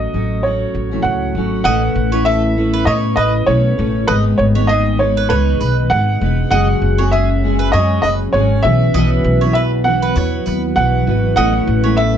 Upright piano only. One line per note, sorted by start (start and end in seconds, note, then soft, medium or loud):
0.00 0.45 D#5 medium
0.43 1.31 C#5 medium
1.02 1.63 F#5 medium
1.64 2.27 F#5 loud
2.25 2.88 E5 loud
2.85 2.92 D#5 medium
3.16 3.48 D#5 medium
3.46 4.10 C#5 medium
4.07 4.14 B4 medium
4.38 4.45 C#5 medium
4.67 4.96 D#5 loud
4.99 5.31 C#5 medium
5.29 5.86 B4 medium
5.90 6.49 F#5 loud
6.51 7.08 F#5 loud
7.11 7.74 E5 medium
7.72 8.00 D#5 medium
8.02 8.09 D#5 medium
8.33 8.64 C#5 medium
8.63 9.52 E5 loud
9.53 9.60 E5 loud
9.84 10.72 F#5 medium
10.76 11.34 F#5 loud
11.36 11.99 F#5 loud
11.97 12.18 E5 medium